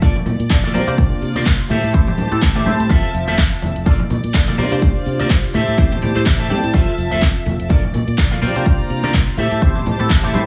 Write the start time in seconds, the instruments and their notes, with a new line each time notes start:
0.02 fingered electric bass A#1, analog polysynth A#3 D4 F4 A4 D5, clean electric guitar F4 A4 A#4 D5, string section D5, kick, closed hi-hat, tambourine
0.15 tambourine, low conga
0.26 fingered electric bass A#2, muted clean electric guitar stroke, open hi-hat, tambourine, high conga, low conga
0.39 fingered electric bass A#2, closed hi-hat, tambourine
0.50 fingered electric bass A#1, analog polysynth A#3 D4 F4 A4 D5, kick, clap, closed hi-hat
0.63 clean electric guitar F4 A4 A#4 D5, tambourine, high conga
0.74 fingered electric bass C3, analog polysynth A#3 D4 F4 G4 C5, string section F4, clean electric guitar F4 A#4 C5 D5, open hi-hat, tambourine, low conga
0.87 fingered electric bass C3, analog polysynth A#3 D4 F4 G4 C5, closed hi-hat, tambourine
0.97 fingered electric bass C2, analog polysynth A#3 D4 F4 G4 C5, kick, closed hi-hat, tambourine, high conga
1.11 muted fingered electric bass stroke, tambourine
1.22 fingered electric bass C3, open hi-hat, tambourine
1.35 fingered electric bass C3, clean electric guitar F4 A#4 C5 D5, closed hi-hat, tambourine, high conga
1.46 fingered electric bass C2, kick, clap, closed hi-hat, tambourine
1.59 muted clean electric guitar stroke, tambourine
1.70 fingered electric bass A2, string section G4 C5 A5, clean electric guitar G4 A4 C5 E5, open hi-hat, tambourine, high conga
1.83 fingered electric bass A2, closed hi-hat, tambourine
1.94 fingered electric bass A1, analog polysynth A3 C4 E4 G4 C5, kick, closed hi-hat, tambourine
2.07 analog polysynth A3 C4 E4 G4 C5, tambourine, low conga
2.18 fingered electric bass A2, muted clean electric guitar stroke, open hi-hat, tambourine, high conga, low conga
2.31 fingered electric bass A2, analog polysynth A3 C4 E4 G4 A4, closed hi-hat, tambourine
2.42 fingered electric bass A1, kick, clap, closed hi-hat
2.55 analog polysynth A3 C4 E4 G4 D5, clean electric guitar G4 A4 C5 E5, tambourine, high conga
2.65 fingered electric bass A2, analog polysynth A3 C4 E4 G4 C5, open hi-hat, tambourine, low conga
2.79 fingered electric bass A2, closed hi-hat, tambourine
2.89 fingered electric bass F2, string section F3 E5, analog polysynth C4 F4 A4 E5, clean electric guitar F4 A4 C5 E5, kick, closed hi-hat, tambourine, high conga
3.04 tambourine
3.14 fingered electric bass F1, open hi-hat, tambourine
3.27 fingered electric bass F1, clean electric guitar F4 A4 C5 E5, closed hi-hat, tambourine, high conga
3.38 fingered electric bass F2, kick, clap, closed hi-hat
3.52 muted clean electric guitar stroke, tambourine
3.62 fingered electric bass F1, open hi-hat, tambourine, high conga
3.76 fingered electric bass F1, closed hi-hat, tambourine
3.86 fingered electric bass A#1, analog polysynth A#3 D4 F4 A4 D5, clean electric guitar F4 A4 A#4 D5, string section D5, kick, closed hi-hat, tambourine
4.00 tambourine, low conga
4.10 fingered electric bass A#2, muted clean electric guitar stroke, open hi-hat, tambourine, high conga, low conga
4.24 fingered electric bass A#2, closed hi-hat, tambourine
4.34 fingered electric bass A#1, analog polysynth A#3 D4 F4 A4 D5, kick, clap, closed hi-hat
4.48 clean electric guitar F4 A4 A#4 D5, tambourine, high conga
4.57 fingered electric bass C3, analog polysynth A#3 D4 F4 G4 C5, string section F4, clean electric guitar F4 A#4 C5 D5, open hi-hat, tambourine, low conga
4.71 fingered electric bass C3, analog polysynth A#3 D4 F4 G4 C5, closed hi-hat, tambourine
4.81 fingered electric bass C2, analog polysynth A#3 D4 F4 G4 C5, kick, closed hi-hat, tambourine, high conga
4.95 muted fingered electric bass stroke, tambourine
5.06 fingered electric bass C3, open hi-hat, tambourine
5.20 fingered electric bass C3, clean electric guitar F4 A#4 C5 D5, closed hi-hat, tambourine, high conga
5.30 fingered electric bass C2, kick, clap, closed hi-hat
5.43 muted clean electric guitar stroke, tambourine
5.54 fingered electric bass A2, string section G4 C5 A5, clean electric guitar G4 A4 C5 E5, open hi-hat, tambourine, high conga
5.68 fingered electric bass A2, closed hi-hat, tambourine
5.78 fingered electric bass A1, analog polysynth A3 C4 E4 G4 C5, kick, closed hi-hat, tambourine
5.91 analog polysynth A3 C4 E4 G4 C5, tambourine, low conga
6.02 fingered electric bass A2, analog polysynth A3 C4 E4 G4 D5, muted clean electric guitar stroke, open hi-hat, tambourine, high conga, low conga
6.15 fingered electric bass A2, analog polysynth A3 C4 E4 G4 C5, closed hi-hat, tambourine
6.26 fingered electric bass A1, analog polysynth A3 C4, clean electric guitar E5, kick, clap, closed hi-hat
6.39 clean electric guitar G4 A4 C5 E5, tambourine, high conga
6.50 fingered electric bass A2, analog polysynth A3 C4 E4 G4 D5, clean electric guitar G5, open hi-hat, tambourine, low conga
6.64 fingered electric bass A2, closed hi-hat, tambourine
6.73 fingered electric bass F2, string section F3 E5, analog polysynth C4 F4 A4 E5, clean electric guitar F4 A4 C5 E5, kick, closed hi-hat, tambourine, high conga
6.88 tambourine
6.98 fingered electric bass F1, open hi-hat, tambourine
7.11 fingered electric bass F1, clean electric guitar F4 A4 C5 E5, closed hi-hat, tambourine, high conga
7.22 fingered electric bass F2, kick, clap, closed hi-hat, tambourine
7.35 muted clean electric guitar stroke, tambourine
7.46 fingered electric bass F1, open hi-hat, tambourine, high conga
7.59 fingered electric bass F1, closed hi-hat, tambourine
7.69 fingered electric bass A#1, analog polysynth A#3 D4 F4 A4 D5, clean electric guitar F4 A4 A#4 D5, string section D5, kick, closed hi-hat, tambourine
7.83 tambourine, low conga
7.94 fingered electric bass A#2, muted clean electric guitar stroke, open hi-hat, tambourine, high conga, low conga
8.08 fingered electric bass A#2, closed hi-hat, tambourine
8.18 fingered electric bass A#1, analog polysynth A#3 D4 F4 A4 D5, kick, clap, closed hi-hat
8.31 clean electric guitar F4 A4 A#4 F5, tambourine, high conga
8.41 fingered electric bass C3, analog polysynth A#3 D4 F4 G4 C5, string section F4 A#5, clean electric guitar F4 A#4 C5 D5, open hi-hat, tambourine, low conga
8.55 fingered electric bass C3, analog polysynth A#3 D4 F4 G4 C5, closed hi-hat, tambourine
8.65 fingered electric bass C2, analog polysynth A#3 D4 F4 G4 C5, kick, closed hi-hat, tambourine, high conga
8.79 muted fingered electric bass stroke, tambourine
8.90 fingered electric bass C3, open hi-hat, tambourine
9.03 fingered electric bass C3, clean electric guitar F4 A#4 C5 D5, closed hi-hat, tambourine, high conga
9.14 fingered electric bass C2, kick, clap, closed hi-hat
9.27 muted clean electric guitar stroke, tambourine
9.37 fingered electric bass A2, string section G4 C5 A5, clean electric guitar G4 A4 C5 E5, open hi-hat, tambourine, high conga
9.51 fingered electric bass A2, closed hi-hat, tambourine
9.61 fingered electric bass A1, analog polysynth A3 C4 E4 G4 C5, kick, closed hi-hat, tambourine
9.75 analog polysynth A3 C4 E4 G4 C5, tambourine, low conga
9.86 fingered electric bass A2, muted clean electric guitar stroke, open hi-hat, tambourine, high conga, low conga
9.99 fingered electric bass A2, analog polysynth A3 C4 E4 G4 A4, closed hi-hat, tambourine
10.10 fingered electric bass A1, kick, clap, closed hi-hat
10.23 analog polysynth A3 C4 E4 G4 D5, clean electric guitar G4 A4 C5 E5, tambourine, high conga
10.34 fingered electric bass A2, analog polysynth A3 C4 E4 G4 C5, open hi-hat, tambourine, low conga